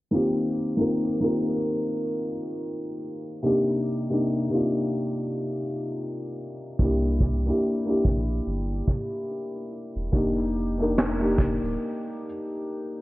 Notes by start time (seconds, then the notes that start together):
0.11 D#3 A#3 C4 F4
0.15 G4
0.77 D#3 A#3 C4 F4
0.81 A#4
1.20 D#3 A#3 C4 F4 A#4
3.42 C3 A#3 D4 D#4 G4
4.10 C3 A#3 D4 D#4
4.14 G4
4.50 C3 A#3 D4 D#4
4.55 F4
6.79 C2 A#3 D4 E4 G4, kick, closed hi-hat
7.06 closed hi-hat
7.21 kick, closed hi-hat
7.46 A#3 D4 E4, closed hi-hat
7.50 G4
7.65 closed hi-hat
7.85 A#3 D4 E4, closed hi-hat
7.89 G4
8.05 A#1, kick, closed hi-hat
8.30 closed hi-hat
8.46 G1, closed hi-hat
8.72 closed hi-hat
8.87 kick, closed hi-hat
9.12 closed hi-hat
9.31 closed hi-hat
9.55 closed hi-hat
9.72 closed hi-hat
9.96 E1, closed hi-hat
10.12 F1 A#3 D4 D#4, kick, closed hi-hat
10.16 G4
10.40 closed hi-hat
10.56 closed hi-hat
10.78 A#3 D4 D#4, closed hi-hat
10.82 A#4
10.98 snare, closed hi-hat
11.18 A#3 D4 D#4 G4
11.23 closed hi-hat
11.38 kick, closed hi-hat
11.62 D1, closed hi-hat